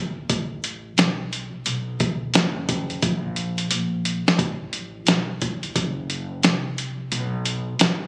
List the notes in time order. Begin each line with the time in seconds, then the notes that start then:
Already playing: G1
0.30 A1, kick, closed hi-hat
0.64 closed hi-hat
0.98 B1, snare, closed hi-hat
1.33 closed hi-hat
1.54 muted upright bass stroke
1.66 B1, closed hi-hat
2.00 kick, closed hi-hat
2.34 F#1, snare, closed hi-hat
2.69 kick, closed hi-hat
2.90 closed hi-hat
3.02 A#1, kick, closed hi-hat
3.36 closed hi-hat
3.58 closed hi-hat
3.71 A#1, closed hi-hat
4.05 closed hi-hat
4.26 muted upright bass stroke, snare
4.39 A1, kick, closed hi-hat
4.73 closed hi-hat
5.07 B1, snare, closed hi-hat
5.42 A1, kick, closed hi-hat
5.63 closed hi-hat
5.76 F#1, kick, closed hi-hat
6.10 closed hi-hat
6.43 C2, snare, closed hi-hat
6.78 closed hi-hat
7.12 B1, closed hi-hat
7.46 closed hi-hat
7.79 A1, snare, closed hi-hat